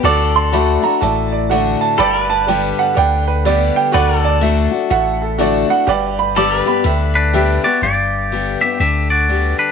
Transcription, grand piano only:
X:1
M:4/4
L:1/8
Q:"Swing" 1/4=123
K:G
V:1 name="Grand piano"
[FAd]2 [FAd]2 [FAd]2 [FAd]2 | [GBd]2 [GBd]2 [GBd]2 [GBd]2 | [FAd]2 [FAe]2 [FAe]2 [FAd]2 | [GBd]2 [GBd]2 [GBe]2 [GBe]2 |
z8 |]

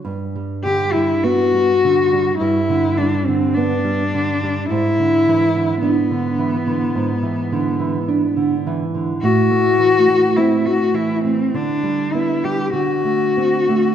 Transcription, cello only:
X:1
M:4/4
L:1/16
Q:1/4=52
K:G
V:1 name="Cello"
z2 G E F4 E2 D C D4 | E4 B,8- B,2 z2 | F4 E F E C D2 E G F4 |]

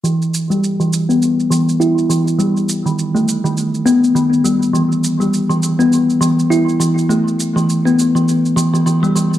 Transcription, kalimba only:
X:1
M:4/4
L:1/16
Q:"Swing 16ths" 1/4=102
K:Em
V:1 name="Kalimba" clef=bass
E,3 G, z E,2 B,3 E,2 E2 E, z | G, z2 ^D, z A, z D,3 B, z D, z G, z | E,3 G, z E,2 B,3 E,2 E2 E, z | A, z2 E, z B, z E,3 E, E, E, G, E, z |]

